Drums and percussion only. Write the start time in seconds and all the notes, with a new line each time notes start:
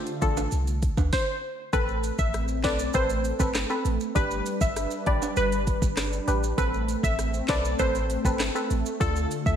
0.06 closed hi-hat, maracas
0.22 kick, closed hi-hat, maracas
0.37 high timbale, maracas
0.51 closed hi-hat, maracas
0.67 closed hi-hat, maracas
0.82 kick, closed hi-hat, maracas
0.97 kick, high timbale, maracas
1.13 kick, snare
1.73 kick, closed hi-hat, maracas
1.88 maracas
2.03 closed hi-hat, maracas
2.18 kick, maracas
2.34 cross-stick, closed hi-hat, maracas
2.48 maracas
2.64 kick, snare, clap, closed hi-hat
2.79 maracas
2.93 kick, closed hi-hat, maracas
3.09 closed hi-hat, maracas
3.24 closed hi-hat, maracas
3.40 kick, maracas
3.55 cross-stick, snare, clap, closed hi-hat, maracas
3.70 maracas
3.85 closed hi-hat, maracas
4.00 maracas
4.16 kick, closed hi-hat, maracas
4.31 maracas
4.46 closed hi-hat, maracas
4.61 kick, maracas
4.76 cross-stick, closed hi-hat, maracas
4.91 maracas
5.06 kick, closed hi-hat
5.22 high timbale, maracas
5.36 closed hi-hat, maracas
5.52 closed hi-hat, maracas
5.67 kick, closed hi-hat, maracas
5.82 kick, maracas
5.97 cross-stick, snare, clap, closed hi-hat, maracas
6.13 maracas
6.28 closed hi-hat, maracas
6.43 maracas
6.58 kick, closed hi-hat, maracas
6.74 maracas
6.88 closed hi-hat, maracas
7.03 kick, maracas
7.19 cross-stick, closed hi-hat, maracas
7.34 maracas
7.48 kick, snare, clap, closed hi-hat
7.65 maracas
7.79 kick, closed hi-hat, maracas
7.95 closed hi-hat, maracas
8.10 closed hi-hat, maracas
8.25 kick, maracas
8.39 cross-stick, snare, clap, closed hi-hat, maracas
8.56 maracas
8.70 closed hi-hat, maracas
8.86 maracas
9.01 kick, closed hi-hat, maracas
9.16 maracas
9.31 closed hi-hat, maracas
9.46 kick, maracas